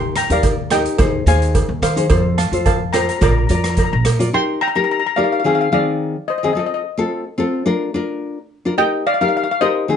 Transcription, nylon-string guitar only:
Already playing: D#4 G4 A#4
0.30 D#4 G4 A#4
0.72 D#4 G4 A#4
0.99 D#4 G#4 C5
1.27 D#4 G#4 C5
1.96 D#4 G#4 C5
2.10 F4 A4 C5
2.52 F4 A4 C5
2.94 F4 A4 C5
3.21 F4 A#4 D5
3.50 F4 A#4 D5
4.19 F4 A#4 D5
4.33 D#4 G4 A#4
4.75 D#4 G4 A#4
5.17 D#4 G4 A#4
5.44 D#3 C4 D#4 G#4
5.72 D#3 C4 D#4 G#4
6.43 D#3 C4 D#4 G#4
6.55 C4 F4 A4
6.98 C4 F4 A4
7.38 C4 F4 A4
7.66 D4 F4 A#4
7.94 D4 F4 A#4
8.65 D4 F4 A#4
8.78 D#4 G4 A#4
9.21 D#4 G4 A#4
9.62 D#4 G4 A#4
9.88 D#3 C4 D#4 G#4

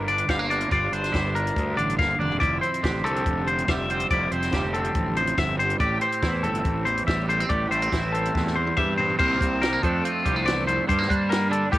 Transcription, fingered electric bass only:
Already playing: G1
0.29 G1
0.71 G1
0.92 G1
1.14 G1
1.57 D2
1.77 A1
1.99 G1
2.19 F1
2.41 F1
2.83 A1
3.03 C2
3.27 F1
3.68 F1
4.10 F1
4.32 F1
4.53 F1
4.96 A1
5.38 G1
5.80 A1
6.23 E2
6.43 G1
6.65 A1
7.08 A1
7.50 A1
7.70 A1
7.93 A1
8.35 E2
8.78 G2
9.20 C2
9.41 C2
9.83 F2
10.26 C2
10.90 G2
11.11 G3
11.73 A2

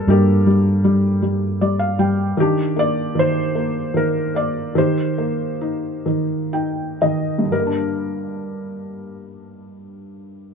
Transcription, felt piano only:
Already playing: G3 A4 A#4 C5 D5
0.08 G3 A#3 G4
0.46 G3
0.84 G3
1.22 G3
1.61 G3 D5
1.79 F5
1.99 G3 G5
2.37 D#3 G4
2.42 D4
2.76 A#3 D5
3.15 D#3
3.19 C5
3.55 A#3
3.94 D#3 A#4
4.35 A#3 D5
4.75 D#3 G4 C5
5.18 A#3
5.61 D#4
6.06 D#3
6.53 D#4 G5
7.02 D#3 D#5
7.39 G2
7.45 D3
7.52 G3 A#4
7.59 A#3
7.67 D4

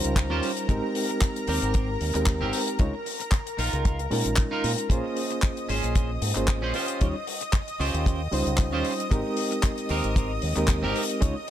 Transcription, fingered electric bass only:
0.05 C#2
0.31 D#2
0.69 G#1
1.48 D#2
1.63 G#1
2.01 D#2
2.15 D#2
2.41 G#1
2.80 C#2
3.59 A#1
3.73 C#2
4.11 A#2
4.26 A#1
4.64 A#2
4.90 A#1
5.69 G#1
5.84 A#1
6.22 G#2
6.36 G#1
6.63 A#1
7.01 D#2
7.80 C#2
7.94 D#2
8.32 C#2
8.47 C#2
8.73 D#2
9.11 G#1
9.90 D#2
10.05 G#1
10.43 D#2
10.57 D#2
10.83 G#1
11.22 C#2

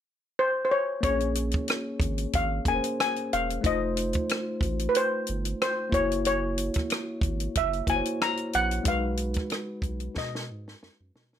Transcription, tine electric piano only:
1.01 A#3 C#4
1.05 G#4 C#5
2.65 A#3 C#4 G#4 A#4
2.74 C5
3.61 A3 D#4 F4
3.67 C5
5.89 A#3 E4
5.93 F#4 C#5
7.87 A#3 E4 F#4 C5
7.96 C#5
8.83 G#3 D#4 F#4
8.89 B4

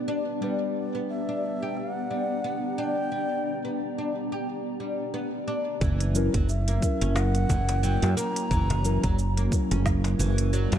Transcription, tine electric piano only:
Already playing: G3 B3 B4
0.41 G3 B3 D4 B4
6.14 F#3 C#4 E4 A#4
6.80 F#3 C#4 E4
6.84 A#4
8.83 F#3 C#4 E4 A#4
9.50 F#3 C#4 E4 A#4

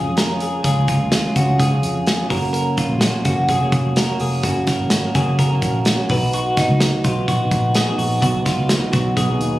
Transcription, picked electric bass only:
Already playing: F2
0.64 C#2
1.00 D#2
1.36 C#2
1.60 C#2
1.83 F2
2.30 F#1
2.90 A#1
3.25 F#1
3.49 F1
3.72 F1
4.20 F1
4.43 F#1
4.80 G#1
5.15 F#1
5.39 F#1
5.62 A#1
6.10 B1
6.69 C#2
7.05 B1
7.28 A#1
7.51 A#1
7.98 A#1
8.22 B1
8.57 C#2
8.93 B1
9.17 B1
9.40 D#2

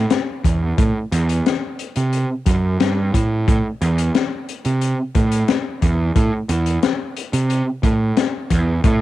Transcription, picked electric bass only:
0.44 E2
0.78 A2
1.12 E2
1.97 C3
2.46 F#2
2.81 G2
3.14 A2
3.48 A2
3.82 E2
4.66 C3
5.15 A2
5.82 E2
6.16 A2
6.49 E2
7.33 C3
7.83 A2
8.51 E2
8.84 A2

